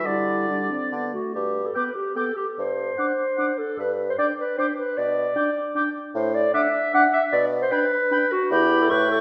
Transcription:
0.06 bassoon D3, french horn G3, clarinet E4, oboe D5, flute D5
0.49 french horn G3, clarinet D4, flute D5
0.71 french horn C4
0.92 bassoon D3, french horn B3, flute D5
1.13 french horn A3, clarinet F#4
1.34 bassoon G2, clarinet G4
1.66 clarinet A4
1.75 french horn B3, clarinet B4, oboe G5, flute D6
1.95 clarinet G4
2.15 french horn B3, clarinet A4, oboe G5, flute D6
2.36 clarinet G4
2.58 bassoon G2, clarinet C5
2.98 french horn D4, oboe F#5, flute D6
3.37 french horn D4, oboe F#5, flute D6
3.58 clarinet A4
3.79 bassoon G2, clarinet B4
4.09 clarinet C5
4.18 french horn D4, clarinet D5, oboe G5, flute D6
4.40 clarinet B4
4.58 french horn D4, clarinet C5, oboe G5, flute D6
4.78 clarinet B4
4.97 bassoon B2, clarinet D5
5.36 french horn D4, oboe G5, flute D6
5.75 french horn D4, oboe G5, flute D6
6.15 bassoon A2, clarinet C5
6.35 clarinet D5
6.54 french horn D4, clarinet E5, oboe F#5, flute D6
6.93 french horn D4, oboe F#5, clarinet F#5, flute D6
7.14 clarinet E5
7.32 bassoon B2, clarinet D5
7.62 clarinet C5
7.71 french horn D4, clarinet B4, oboe G5, flute B5
8.11 french horn D4, oboe G5, flute B5
8.32 clarinet F#4
8.50 bassoon E2, french horn E4, clarinet G4, oboe G5, flute B5
8.81 clarinet A4
8.89 bassoon A2, french horn E4, clarinet B4, oboe G5, flute C#6
9.11 clarinet A4

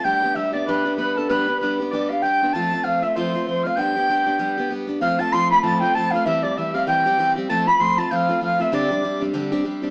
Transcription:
Already playing: harp C5 D5 F5 A5
0.04 steel-string acoustic guitar G3 B3 D4 G4, harp G5, flute G5, tin whistle G6
0.22 steel-string acoustic guitar B3 D4 G4
0.35 steel-string acoustic guitar G3 B3 D4 G4, flute E5, harp E5, tin whistle E6
0.52 steel-string acoustic guitar B3 D4 G4, harp D5, flute D5, tin whistle D6
0.66 steel-string acoustic guitar G3 B3 D4 G4, harp B4, flute B4, tin whistle D6
0.71 tin whistle B5
0.85 steel-string acoustic guitar B3 D4 G4
0.97 steel-string acoustic guitar G3 B3 D4 G4, harp B4, flute B4, tin whistle B5
1.15 steel-string acoustic guitar B3 D4 G4, flute A4, tin whistle A5
1.28 steel-string acoustic guitar G3 B3 D4 G4, harp B4, flute B4, tin whistle B5
1.38 harp B4
1.47 steel-string acoustic guitar B3 D4 G4, harp B4
1.58 steel-string acoustic guitar G3, harp B4, flute B4, tin whistle B5
1.62 steel-string acoustic guitar B3 D4 G4
1.80 steel-string acoustic guitar B3 D4 G4
1.91 steel-string acoustic guitar G3 B3 D4 G4, harp D5, flute D5, tin whistle D6
2.09 steel-string acoustic guitar B3 D4 G4, flute F5, harp F5
2.22 steel-string acoustic guitar G3 B3 D4 G4, harp G5, flute G5, tin whistle G6
2.42 steel-string acoustic guitar B3 D4 G4
2.53 steel-string acoustic guitar F3 A3 C4 F4, flute A5, harp A5, tin whistle A6
2.72 steel-string acoustic guitar A3 C4 F4
2.84 steel-string acoustic guitar F3 A3 C4 F4, flute F5, harp F5, tin whistle F6
3.02 steel-string acoustic guitar A3 C4 F4, harp E5, flute E5, tin whistle E6
3.15 steel-string acoustic guitar F3 A3 C4 F4, harp C5, flute C5, tin whistle C6
3.34 steel-string acoustic guitar A3 C4 F4
3.45 steel-string acoustic guitar F3 A3 C4, harp C5, flute C5, tin whistle C6
3.49 steel-string acoustic guitar F4
3.57 harp C5
3.63 steel-string acoustic guitar A3 C4 F4, flute F5, tin whistle F6
3.68 harp C5
3.76 steel-string acoustic guitar G3 B3 D4 G4, harp G5, flute G5, tin whistle G6
3.96 steel-string acoustic guitar B3 D4 G4
4.08 steel-string acoustic guitar G3 B3 D4 G4
4.26 steel-string acoustic guitar B3 D4 G4
4.39 steel-string acoustic guitar G3 B3 D4 G4
4.58 steel-string acoustic guitar B3 D4 G4
4.70 steel-string acoustic guitar G3 B3 D4 G4
4.87 steel-string acoustic guitar B3 D4 G4
5.01 steel-string acoustic guitar F3 A3 C4 F4, flute F5, harp F5, tin whistle F6
5.18 steel-string acoustic guitar A3 C4 F4, harp A5, flute A5, tin whistle A6
5.33 steel-string acoustic guitar F3 A3 C4 F4, harp C6, flute C6, tin whistle C7
5.50 steel-string acoustic guitar A3 C4 F4, flute B5, harp B5, tin whistle B6
5.62 steel-string acoustic guitar F3 A3 C4 F4, flute A5, harp A5, tin whistle A6
5.77 flute G5 A5
5.81 steel-string acoustic guitar A3 C4 F4, harp G5, tin whistle G6
5.94 steel-string acoustic guitar F3 A3 C4 F4, harp A5, flute A5, tin whistle A6
6.11 steel-string acoustic guitar F4, flute F5, harp F5, tin whistle F6
6.15 steel-string acoustic guitar A3 C4
6.25 steel-string acoustic guitar E3 G3 C4 G4, flute E5, harp E5, tin whistle E6
6.43 steel-string acoustic guitar G3 C4 G4, harp D5, flute D5, tin whistle D6
6.56 steel-string acoustic guitar E3 G3 C4 G4, flute E5, harp E5, tin whistle E6
6.74 steel-string acoustic guitar G3 C4 G4, flute F5, harp F5, tin whistle F6
6.87 steel-string acoustic guitar E3 G3 C4 G4, flute G5, harp G5, tin whistle G6
7.06 steel-string acoustic guitar G3 C4 G4
7.18 steel-string acoustic guitar E3 G3 C4 G4
7.36 steel-string acoustic guitar G3 C4 G4
7.49 steel-string acoustic guitar F3 A3 C4 F4, harp A5, flute A5, tin whistle A6
7.67 steel-string acoustic guitar A3 C4 F4, flute B5, harp B5, tin whistle B6
7.79 steel-string acoustic guitar F3 A3 C4 F4, harp C6, flute C6, tin whistle C7
7.98 steel-string acoustic guitar A3 C4 F4, flute A5, harp A5, tin whistle A6
8.11 steel-string acoustic guitar F3 A3 C4 F4, flute F5, harp F5, tin whistle G6
8.16 tin whistle F6
8.29 steel-string acoustic guitar A3 C4 F4
8.41 steel-string acoustic guitar F3 A3 C4 F4, harp F5, flute F5, tin whistle F6
8.60 steel-string acoustic guitar A3 C4 F4, harp E5, flute E5, tin whistle E6
8.72 steel-string acoustic guitar G2 D3 G3 C4 D4 G4, harp D5, flute D5, tin whistle D6
8.90 steel-string acoustic guitar G3 C4 D4 G4
9.03 steel-string acoustic guitar G3 C4 D4 G4
9.20 steel-string acoustic guitar G3 C4 D4 G4
9.33 steel-string acoustic guitar G2 D3 G3 C4 D4 G4
9.52 steel-string acoustic guitar G3 C4 D4 G4
9.65 steel-string acoustic guitar G3 C4 D4 G4
9.82 steel-string acoustic guitar G3 C4 D4 G4

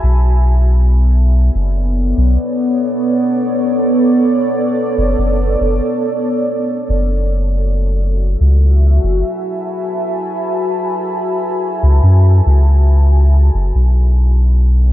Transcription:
Already playing: ambient pad F#4 E5 G#5 A5 B5
0.03 sub bass B1, ambient pad B3
0.50 ambient pad A4
0.69 ambient pad D5
0.75 ambient pad C#5
1.54 sub bass F#1
2.17 sub bass B1
4.98 sub bass F#1
5.18 sub bass F#1
5.60 sub bass F#1
6.89 sub bass F#1, ambient pad F#4
7.19 ambient pad E5
7.73 ambient pad G#5
8.07 ambient pad A5
8.26 ambient pad B5
8.40 sub bass C#2
9.03 sub bass F#1
11.83 sub bass C#2
12.03 sub bass F#2
12.46 sub bass C#2
13.54 sub bass F#1
13.75 sub bass B1, ambient pad B3
13.86 ambient pad A4
13.99 ambient pad C#5
14.54 ambient pad D5

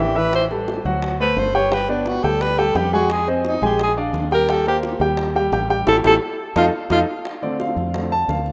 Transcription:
Already playing: fingered electric bass A1
0.00 grand piano E3 E4 E5, alto saxophone G4
0.15 grand piano E3 E4 E5, alto saxophone B4, high bongo
0.33 alto saxophone C5, high bongo
0.51 grand piano G3 G4 A4, high bongo
0.68 high bongo
0.85 fingered electric bass D2, grand piano F#3 F#4 F#5, high bongo
1.02 high bongo
1.20 grand piano A3 A4 C5, alto saxophone B4
1.36 fingered electric bass G1, alto saxophone C5, high bongo, low bongo
1.54 grand piano G3 G4 G5, alto saxophone C#5, high bongo
1.71 grand piano G3 G4 G5, alto saxophone B4, high bongo
1.89 grand piano B3 B4 D5, alto saxophone D4, high bongo
2.06 alto saxophone F#4, high bongo
2.24 fingered electric bass D2, grand piano G3 G4 G5, alto saxophone A4, high bongo
2.41 alto saxophone B4, high bongo
2.58 grand piano G3 G4 G5, alto saxophone A4
2.75 fingered electric bass F2, grand piano G3 G4 G5, alto saxophone G4, high bongo, low bongo
2.93 grand piano G#3 G#4 G#5, alto saxophone F#4, high bongo
3.10 alto saxophone G#4, high bongo
3.27 grand piano C4 C5 D#5, alto saxophone C4, high bongo
3.45 alto saxophone D#4, high bongo
3.62 fingered electric bass A#1, grand piano G#3 G#4 G#5, alto saxophone G4, high bongo
3.79 alto saxophone G#4, high bongo
3.97 grand piano D4 D5 F5
4.13 fingered electric bass D#2, high bongo, low bongo
4.31 grand piano G3 G4 G5, alto saxophone A#4, high bongo
4.49 grand piano G3 G4 G5, alto saxophone A4, high bongo
4.66 grand piano A#3 A#4 C5, alto saxophone G4, high bongo
4.83 high bongo
5.00 fingered electric bass D#2, grand piano G3 G4 G5, high bongo
5.17 high bongo
5.36 grand piano G3 G4 G5
5.52 fingered electric bass A1, grand piano G3 G4 G5, high bongo, low bongo
5.70 grand piano G3 G4 G5, high bongo
5.87 fingered electric bass A1, grand piano E4 G4 A4, alto saxophone A4, high bongo
6.04 fingered electric bass A1, grand piano E4 G4 A4, alto saxophone A4, high bongo
6.56 fingered electric bass F2, grand piano D#4 F4 A4, alto saxophone F4, high bongo
6.90 fingered electric bass F2, grand piano D#4 F4 A4, alto saxophone F4, high bongo
7.25 high bongo
7.42 grand piano D3 A3 C4 D5, high bongo
7.60 grand piano F5, high bongo
7.76 fingered electric bass F2, high bongo
7.94 grand piano D3 A3 C4, high bongo
8.12 grand piano A5
8.28 fingered electric bass D2, grand piano F5, high bongo, low bongo
8.46 high bongo

